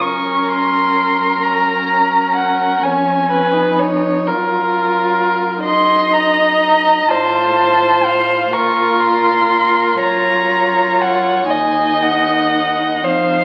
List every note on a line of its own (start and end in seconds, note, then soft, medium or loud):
0.00 2.79 F#2 soft
0.00 1.42 C#4 soft
0.00 2.86 A#4 soft
0.00 0.50 C#6 soft
0.49 1.44 C6 medium
1.43 2.81 C#4 soft
1.43 2.35 A#5 medium
2.36 2.85 F#5 medium
2.82 4.29 F2 soft
2.82 3.55 C#4 soft
2.82 3.30 C#5 soft
2.82 3.78 G#5 medium
3.31 3.81 B4 soft
3.53 4.28 D#4 soft
3.79 4.29 C#5 soft
4.27 7.10 F#2 soft
4.27 5.64 F4 soft
4.27 5.67 A#4 soft
5.65 7.10 D#4 soft
5.65 7.12 D#5 medium
5.65 6.14 C6 medium
6.12 7.10 A#5 medium
7.08 8.51 A2 soft
7.08 8.53 F4 soft
7.08 8.55 C5 medium
7.08 8.08 A5 medium
8.06 8.55 F5 medium
8.53 10.00 A#2 soft
8.53 9.99 F4 soft
8.53 10.02 A#4 medium
8.53 9.03 C#6 medium
9.01 10.00 C6 medium
10.00 11.49 F#2 medium
10.00 11.48 F4 soft
10.00 11.52 C#5 medium
10.00 11.03 A#5 medium
11.02 11.48 F#5 medium
11.48 13.03 D#2 soft
11.48 13.00 D#4 soft
11.48 13.06 D#5 soft
11.48 12.04 G#5 medium
12.02 13.05 F#5 medium
13.02 13.44 F2 soft
13.02 13.44 D#4 soft
13.02 13.44 C5 soft
13.02 13.44 F5 medium